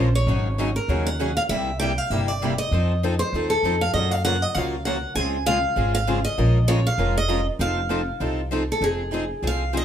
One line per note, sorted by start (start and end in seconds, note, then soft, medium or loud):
0.00 0.22 A#1 medium
0.00 0.15 C5 medium
0.15 0.75 C#5 medium
0.27 0.76 G#1 medium
0.27 0.47 C#3 medium
0.27 0.47 F#3 medium
0.27 0.47 C#4 medium
0.27 0.47 D#4 medium
0.27 0.48 G#4 medium
0.58 0.69 C#3 medium
0.58 0.69 F#3 medium
0.58 0.69 C#4 medium
0.58 0.69 D#4 medium
0.58 0.70 G#4 medium
0.76 1.07 A#4 medium
0.88 1.37 D#2 medium
0.88 1.08 C#3 medium
0.88 1.08 F#3 medium
0.88 1.08 C#4 medium
0.88 1.09 D#4 medium
0.88 1.09 G#4 medium
1.07 1.36 F#5 medium
1.20 1.30 C#3 medium
1.20 1.30 F#3 medium
1.20 1.31 C#4 medium
1.20 1.31 D#4 medium
1.20 1.31 G#4 medium
1.37 1.42 F5 medium
1.49 1.98 C2 medium
1.49 1.69 C3 medium
1.49 1.70 G3 medium
1.49 1.69 A#3 medium
1.49 1.70 E4 medium
1.49 1.70 G4 medium
1.49 1.79 E5 medium
1.80 1.91 C3 medium
1.80 1.91 G3 medium
1.80 1.92 A#3 medium
1.80 1.92 E4 loud
1.80 1.92 G4 medium
1.80 1.98 G5 loud
1.98 2.11 F5 medium
2.10 2.59 G1 medium
2.10 2.30 C3 medium
2.10 2.31 G3 medium
2.10 2.31 A#3 medium
2.10 2.31 E4 medium
2.10 2.31 G4 medium
2.10 2.28 E5 medium
2.28 2.58 D5 medium
2.42 2.52 C3 medium
2.42 2.52 G3 medium
2.42 2.52 A#3 medium
2.42 2.52 E4 medium
2.42 2.53 G4 medium
2.58 3.22 D#5 loud
2.71 3.21 F2 medium
2.71 2.91 F3 medium
2.71 2.92 C4 medium
2.71 2.92 D#4 medium
2.71 2.92 A4 medium
3.03 3.13 F3 medium
3.03 3.14 C4 medium
3.03 3.14 D#4 medium
3.03 3.14 A4 medium
3.19 3.48 C5 medium
3.33 3.59 D#2 medium
3.33 3.53 F3 medium
3.33 3.53 C4 medium
3.33 3.53 D#4 medium
3.33 3.54 A4 medium
3.50 3.82 A4 medium
3.63 3.89 F2 medium
3.63 3.74 F3 medium
3.63 3.75 C4 medium
3.63 3.75 D#4 medium
3.63 3.75 A4 medium
3.81 3.93 F5 medium
3.94 4.43 F#2 medium
3.94 4.14 C#3 medium
3.94 4.14 F3 medium
3.94 4.14 F#3 medium
3.94 4.14 A#3 medium
3.94 4.14 C#4 medium
3.94 4.15 F4 medium
3.94 4.14 F#4 medium
3.94 4.15 A#4 medium
3.94 4.11 D#5 medium
4.11 4.24 F5 medium
4.25 4.35 C#3 medium
4.25 4.35 F3 medium
4.25 4.35 F#3 medium
4.25 4.35 A#3 medium
4.25 4.36 C#4 medium
4.25 4.36 F4 medium
4.25 4.36 F#4 medium
4.25 4.36 A#4 medium
4.25 4.42 F#5 loud
4.42 4.55 D#5 medium
4.55 5.04 C#2 medium
4.55 4.75 C#3 medium
4.55 4.75 F3 medium
4.55 4.75 F#3 medium
4.55 4.75 A#3 medium
4.55 4.75 C#4 medium
4.55 4.75 F4 medium
4.55 4.76 F#4 medium
4.55 4.75 A#4 medium
4.55 4.85 F5 medium
4.85 4.96 C#3 medium
4.85 4.96 F3 medium
4.85 4.96 F#3 medium
4.85 4.97 A#3 medium
4.85 4.97 C#4 medium
4.85 4.97 F4 medium
4.85 4.97 F#4 medium
4.85 4.97 A#4 medium
4.85 5.14 F#5 medium
5.15 5.64 C#2 medium
5.15 5.36 C#3 medium
5.15 5.36 G#3 medium
5.15 5.36 C4 medium
5.15 5.36 F4 medium
5.15 5.37 G#4 medium
5.15 5.44 G#5 loud
5.46 5.57 C#3 medium
5.46 5.57 G#3 medium
5.46 5.57 C4 medium
5.46 5.57 F4 medium
5.46 5.58 G#4 medium
5.46 5.93 F5 loud
5.76 6.25 G#1 medium
5.76 5.96 C#3 medium
5.76 5.96 G#3 medium
5.76 5.97 C4 medium
5.76 5.97 F4 medium
5.76 5.97 G#4 medium
5.95 6.24 F5 loud
6.07 6.18 C#3 medium
6.07 6.18 G#3 medium
6.07 6.18 C4 medium
6.07 6.18 F4 medium
6.07 6.18 G#4 medium
6.25 6.70 D#5 loud
6.38 6.87 A#1 medium
6.38 6.57 F3 medium
6.38 6.57 G#3 medium
6.38 6.57 C#4 medium
6.38 6.57 F4 medium
6.38 6.58 A#4 medium
6.68 6.79 F3 medium
6.68 6.79 G#3 loud
6.68 6.79 C#4 medium
6.68 6.79 F4 medium
6.68 6.79 A#4 medium
6.68 6.87 C#5 loud
6.87 7.15 F5 loud
6.98 7.47 F1 medium
6.98 7.18 F3 medium
6.98 7.18 G#3 medium
6.98 7.18 C#4 medium
6.98 7.18 F4 medium
6.98 7.18 A#4 medium
7.17 7.46 D#5 loud
7.29 7.40 F3 medium
7.29 7.40 G#3 medium
7.29 7.40 C#4 medium
7.29 7.40 F4 medium
7.29 7.40 A#4 loud
7.59 8.08 F1 medium
7.59 7.79 F3 medium
7.59 7.79 C4 medium
7.59 7.80 D#4 medium
7.59 7.80 A4 medium
7.59 8.48 F5 medium
7.90 8.01 F3 medium
7.90 8.01 C4 medium
7.90 8.01 D#4 medium
7.90 8.01 A4 medium
8.20 8.69 C2 medium
8.20 8.40 F3 medium
8.20 8.40 C4 medium
8.20 8.40 D#4 medium
8.20 8.41 A4 medium
8.51 8.62 F3 medium
8.51 8.62 C4 medium
8.51 8.62 D#4 medium
8.51 8.63 A4 medium
8.72 8.84 A4 medium
8.81 9.30 F1 medium
8.81 9.01 F3 medium
8.81 9.01 C4 medium
8.81 9.01 D#4 medium
8.81 9.02 G#4 medium
8.81 9.46 G#4 medium
9.13 9.23 F3 medium
9.13 9.24 C4 medium
9.13 9.24 D#4 medium
9.13 9.24 G#4 medium
9.42 9.85 C2 medium
9.42 9.62 F3 medium
9.42 9.62 C4 medium
9.42 9.63 D#4 medium
9.42 9.63 G#4 medium
9.47 9.74 F5 loud
9.73 9.84 F3 medium
9.73 9.84 C4 medium
9.73 9.84 D#4 medium
9.73 9.85 G#4 medium
9.77 9.85 D#5 medium